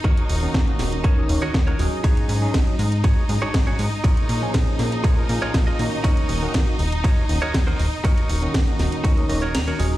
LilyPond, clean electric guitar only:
\new Staff \with { instrumentName = "Clean electric guitar" } { \time 4/4 \key ees \minor \tempo 4 = 120 << { r1 | r1 | r1 | r1 |
r2 r8 ees''8 bes''4 | } \\ { <ees' ges' bes' des''>4 r4 <ees' ges' bes' des''>8 r16 <ees' ges' bes' des''>16 r16 <ees' ges' bes' des''>16 r8 | <ees' ges' aes' des''>4 r4 <ees' ges' aes' des''>8 r16 <ees' ges' aes' des''>16 r16 <ees' ges' aes' des''>16 r8 | <f' aes' bes' des''>4 r4 <f' aes' bes' des''>8 r16 <f' aes' bes' des''>16 r16 <f' aes' bes' ees''>16 r8 | <ees' ges' bes' des''>4 r4 <ees' ges' bes' des''>8 r16 <ees' ges' bes' des''>16 r16 <ees' ges' bes' c''>16 r8 |
<ees' ges' bes' des''>4 r4 <ees' ges' bes' des''>8 r16 <ees' ges' bes' des''>16 r16 <ees' ges' bes' des''>16 r8 | } >> }